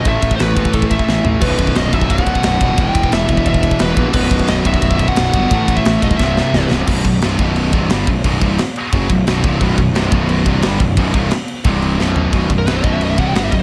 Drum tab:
CC |----------------|x---------------|----------------|x---------------|
RD |x-x-x-x-x-x-----|--x-x-x-x-x-x-x-|x-x-x-x-x-x-x-x-|--x-x-x-x-x-x-x-|
SD |----o-------o---|----o-------o---|----o-------o---|----o-------o---|
FT |--------------o-|----------------|----------------|----------------|
BD |o-oo--oooooo----|o-oo--oooooo--o-|o-oo--oooooo--o-|o-oo--oooooo--o-|

CC |----------------|x-x-x-x-x-x-x-x-|x-x-x-x-x-x-x-x-|x-x-x-x-x-x-x-x-|
RD |x-x-x-x---------|----------------|----------------|----------------|
SD |----o---o-o-o-o-|----o-------o---|----o-------o---|----o-------o---|
FT |----------------|----------------|----------------|----------------|
BD |o-oo--ooo-------|o-o---o---o---o-|o-o-----o-o---o-|o-o---o---o---o-|

CC |x-x-x-x-x-x-----|x-x-x-x-x-x-x-x-|
RD |----------------|----------------|
SD |----o-------o---|----o-------o---|
FT |--------------o-|----------------|
BD |o-o-----o-------|o-o---o---o---o-|